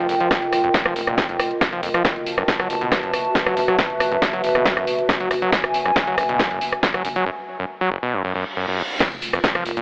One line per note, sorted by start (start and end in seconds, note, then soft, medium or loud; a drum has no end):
0.00 2.05 F4 loud
0.00 2.05 A#4 medium
0.00 2.05 D#5 medium
0.00 2.05 G5 medium
0.09 0.20 F1 loud
0.09 0.15 F2 medium
0.09 open hi-hat loud
0.20 0.29 F3 loud
0.20 closed hi-hat medium
0.31 0.35 F2 medium
0.31 kick loud
0.31 cross-stick loud
0.31 snare loud
0.31 closed hi-hat medium
0.42 0.52 F1 medium
0.42 closed hi-hat medium
0.53 0.64 F1 loud
0.53 cross-stick medium
0.53 open hi-hat loud
0.64 0.70 F2 loud
0.64 closed hi-hat medium
0.74 kick loud
0.74 snare loud
0.74 closed hi-hat medium
0.86 0.95 F1 medium
0.86 0.94 F3 loud
0.86 cross-stick loud
0.86 closed hi-hat medium
0.96 1.07 F1 loud
0.96 1.02 F1 medium
0.96 open hi-hat loud
1.07 1.18 F1 medium
1.07 1.19 A#2 medium
1.07 cross-stick medium
1.07 closed hi-hat medium
1.18 1.27 F2 medium
1.18 kick loud
1.18 snare loud
1.18 closed hi-hat medium
1.29 1.39 F1 medium
1.29 1.38 F2 loud
1.29 closed hi-hat medium
1.39 1.51 F1 loud
1.39 cross-stick loud
1.39 open hi-hat loud
1.51 closed hi-hat soft
1.61 1.67 F2 medium
1.61 kick loud
1.61 cross-stick medium
1.61 snare loud
1.61 closed hi-hat medium
1.72 1.82 F1 medium
1.72 1.81 F3 loud
1.72 closed hi-hat medium
1.83 1.94 F1 loud
1.83 1.89 F2 medium
1.83 open hi-hat loud
1.94 2.03 F3 loud
1.94 cross-stick loud
1.94 closed hi-hat medium
2.05 2.09 F#2 medium
2.05 7.26 F#4 medium
2.05 kick loud
2.05 cross-stick medium
2.05 snare loud
2.05 closed hi-hat medium
2.16 2.26 F#1 medium
2.16 5.35 A5 medium
2.16 closed hi-hat soft
2.26 2.38 F#1 medium
2.26 7.26 B4 medium
2.26 open hi-hat loud
2.38 2.44 F#2 loud
2.38 cross-stick medium
2.38 closed hi-hat medium
2.48 kick loud
2.48 snare loud
2.48 closed hi-hat medium
2.60 2.69 F#1 medium
2.60 2.68 F#3 loud
2.60 cross-stick medium
2.60 closed hi-hat medium
2.65 7.26 E5 medium
2.70 2.81 F#1 loud
2.70 2.76 F#1 medium
2.70 open hi-hat medium
2.81 2.92 F#1 medium
2.81 2.93 B2 medium
2.81 closed hi-hat soft
2.92 3.01 F#2 medium
2.92 kick loud
2.92 cross-stick loud
2.92 snare loud
2.92 closed hi-hat medium
3.03 3.13 F#1 medium
3.03 3.12 F#2 loud
3.03 closed hi-hat medium
3.13 3.25 F#1 loud
3.13 cross-stick medium
3.13 open hi-hat loud
3.35 3.41 F#2 medium
3.35 kick loud
3.35 snare loud
3.35 closed hi-hat medium
3.46 3.56 F#1 medium
3.46 3.55 F#3 loud
3.46 cross-stick loud
3.46 closed hi-hat medium
3.57 3.68 F#1 loud
3.57 3.61 F#2 medium
3.57 open hi-hat medium
3.68 3.77 F#3 loud
3.68 cross-stick medium
3.68 closed hi-hat medium
3.79 3.82 F#2 medium
3.79 kick loud
3.79 snare loud
3.79 closed hi-hat medium
3.90 4.00 F#1 medium
3.90 closed hi-hat soft
4.00 4.11 F#1 loud
4.00 cross-stick medium
4.00 open hi-hat loud
4.12 4.17 F#2 loud
4.12 closed hi-hat medium
4.22 kick loud
4.22 cross-stick medium
4.22 snare loud
4.22 closed hi-hat medium
4.33 4.43 F#1 medium
4.33 4.42 F#3 loud
4.33 closed hi-hat medium
4.44 4.50 F#1 medium
4.44 4.55 F#1 loud
4.44 open hi-hat medium
4.55 4.65 F#1 medium
4.55 4.67 B2 medium
4.55 cross-stick medium
4.55 closed hi-hat medium
4.66 4.75 F#2 medium
4.66 kick loud
4.66 snare loud
4.66 closed hi-hat medium
4.77 4.87 F#1 medium
4.77 4.85 F#2 loud
4.77 cross-stick medium
4.77 closed hi-hat medium
4.87 4.98 F#1 loud
4.87 open hi-hat loud
4.99 closed hi-hat soft
5.09 5.15 F#2 medium
5.09 kick loud
5.09 cross-stick loud
5.09 snare loud
5.09 closed hi-hat medium
5.20 5.30 F#1 medium
5.20 5.29 F#3 loud
5.20 7.27 G#5 medium
5.20 closed hi-hat medium
5.31 5.42 F#1 loud
5.31 5.35 F#2 medium
5.31 cross-stick medium
5.31 open hi-hat medium
5.42 5.51 F#3 loud
5.42 closed hi-hat medium
5.52 5.56 F#2 medium
5.52 kick loud
5.52 snare loud
5.52 closed hi-hat medium
5.64 5.74 F#1 medium
5.64 cross-stick medium
5.64 closed hi-hat medium
5.74 5.85 F#1 loud
5.74 open hi-hat loud
5.86 5.91 F#2 loud
5.86 cross-stick medium
5.86 closed hi-hat medium
5.96 kick loud
5.96 snare loud
5.96 closed hi-hat medium
6.07 6.17 F#1 medium
6.07 6.16 F#3 loud
6.07 closed hi-hat medium
6.18 6.28 F#1 loud
6.18 6.24 F#1 medium
6.18 cross-stick medium
6.18 open hi-hat medium
6.29 6.39 F#1 medium
6.29 6.41 B2 medium
6.29 closed hi-hat medium
6.39 6.49 F#2 medium
6.39 kick loud
6.39 cross-stick medium
6.39 snare loud
6.39 closed hi-hat medium
6.51 6.61 F#1 medium
6.51 6.59 F#2 loud
6.51 closed hi-hat medium
6.61 6.72 F#1 loud
6.61 open hi-hat loud
6.72 cross-stick medium
6.72 closed hi-hat soft
6.83 6.89 F#2 medium
6.83 kick loud
6.83 snare loud
6.83 closed hi-hat medium
6.94 7.04 F#1 medium
6.94 7.03 F#3 loud
6.94 cross-stick medium
6.94 closed hi-hat medium
7.05 7.16 F#1 loud
7.05 7.08 F#2 medium
7.05 open hi-hat medium
7.16 7.25 F#3 loud
7.16 closed hi-hat medium
7.26 7.30 F#2 medium
7.59 7.65 F#2 loud
7.81 7.90 F#3 loud
7.92 7.98 F#1 medium
8.03 8.15 B2 medium
8.13 8.23 F#2 medium
8.13 reverse cymbal medium
8.25 8.33 F#2 loud
8.35 8.44 F#2 loud
8.57 8.66 F#2 loud
8.68 8.80 F#2 medium
8.79 8.82 E2 medium
9.00 9.04 F2 medium
9.00 9.82 F4 loud
9.00 kick loud
9.00 cross-stick medium
9.00 snare loud
9.00 closed hi-hat medium
9.00 crash loud
9.00 impact medium
9.00 shaker soft
9.12 9.21 F1 medium
9.12 9.82 A#4 medium
9.12 closed hi-hat medium
9.22 9.33 F1 loud
9.22 open hi-hat loud
9.22 shaker medium
9.33 9.39 F2 loud
9.33 cross-stick medium
9.33 closed hi-hat medium
9.33 shaker soft
9.44 kick loud
9.44 snare loud
9.44 closed hi-hat medium
9.44 shaker soft
9.55 9.65 F1 medium
9.55 9.64 F3 loud
9.55 cross-stick medium
9.55 closed hi-hat medium
9.65 9.76 F1 loud
9.65 9.72 F1 medium
9.65 9.82 D#5 loud
9.65 open hi-hat medium
9.65 shaker medium
9.77 9.82 F1 medium
9.77 9.82 A#2 medium
9.77 closed hi-hat medium
9.77 shaker soft